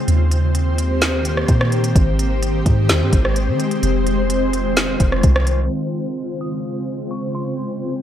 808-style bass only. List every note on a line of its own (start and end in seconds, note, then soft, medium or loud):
0.08 1.45 D#2 loud
1.49 1.94 A#2 loud
1.96 2.63 G#1 loud
2.66 2.91 G#2 loud
2.89 3.02 D#2 loud
3.01 3.12 G#2 loud
3.13 3.49 G#1 loud
3.48 3.81 D#3 loud
3.83 4.96 F1 loud
5.00 5.23 F1 loud
5.24 5.69 C2 loud